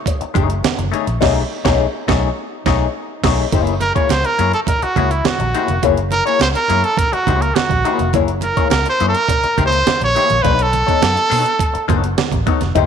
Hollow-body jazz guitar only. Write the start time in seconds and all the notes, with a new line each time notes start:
0.06 muted hollow-body jazz guitar stroke
0.21 muted hollow-body jazz guitar stroke
0.34 A3 D#4 G#4 C#5
0.49 muted hollow-body jazz guitar stroke
0.63 muted hollow-body jazz guitar stroke
0.77 muted hollow-body jazz guitar stroke
0.92 A3 D#4 G#4 C#5
1.07 muted hollow-body jazz guitar stroke
1.21 A3 D#4 G#4 C#5
1.65 A3 D#4 G#4 C#5
2.08 A3 D#4 G#4 C#5
2.66 A3 D#4 G#4 C#5
3.23 A3 D#4 G#4 C#5
3.52 A#3 E4 G#4 C#5
3.82 muted hollow-body jazz guitar stroke
3.95 A#3 E4 G#4 C#5
4.24 muted hollow-body jazz guitar stroke
4.39 A#3 E4 G#4 C#5
4.54 muted hollow-body jazz guitar stroke
4.68 muted hollow-body jazz guitar stroke
4.83 muted hollow-body jazz guitar stroke
4.96 A#3 E4 G#4 C#5
5.11 muted hollow-body jazz guitar stroke
5.25 muted hollow-body jazz guitar stroke
5.40 muted hollow-body jazz guitar stroke
5.54 A#3 E4 G#4 C#5
5.69 muted hollow-body jazz guitar stroke
5.83 A#3 E4 G#4 C#5
6.12 muted hollow-body jazz guitar stroke
6.26 A#3 E4 G#4 C#5
6.55 muted hollow-body jazz guitar stroke
6.69 A#3 E4 G#4 C#5
6.83 muted hollow-body jazz guitar stroke
7.13 muted hollow-body jazz guitar stroke
7.27 A#3 E4 G#4 C#5
7.42 muted hollow-body jazz guitar stroke
7.56 muted hollow-body jazz guitar stroke
7.70 muted hollow-body jazz guitar stroke
7.85 A#3 E4 G#4 C#5
7.99 muted hollow-body jazz guitar stroke
8.14 A#3 E4 G#4 C#5
8.43 muted hollow-body jazz guitar stroke
8.57 A#3 E4 G#4 C#5
8.86 muted hollow-body jazz guitar stroke
9.00 A#3 E4 G#4 C#5
9.15 muted hollow-body jazz guitar stroke
9.29 muted hollow-body jazz guitar stroke
9.44 muted hollow-body jazz guitar stroke
9.58 A#3 E4 G#4 C#5
9.72 muted hollow-body jazz guitar stroke
9.86 muted hollow-body jazz guitar stroke
10.01 muted hollow-body jazz guitar stroke
10.15 A#3 E4 G#4 C#5
10.30 muted hollow-body jazz guitar stroke
10.43 B3 D#4 A4 C#5
10.73 muted hollow-body jazz guitar stroke
10.87 B3 D#4 A4 C#5
11.15 muted hollow-body jazz guitar stroke
11.30 B3 D#4 A4 C#5
11.44 muted hollow-body jazz guitar stroke
11.74 muted hollow-body jazz guitar stroke
11.88 B3 D#4 A4 C#5
12.03 muted hollow-body jazz guitar stroke
12.17 muted hollow-body jazz guitar stroke
12.32 muted hollow-body jazz guitar stroke
12.47 B3 D#4 A4 C#5
12.61 muted hollow-body jazz guitar stroke
12.75 A#3 E4 G#4 C#5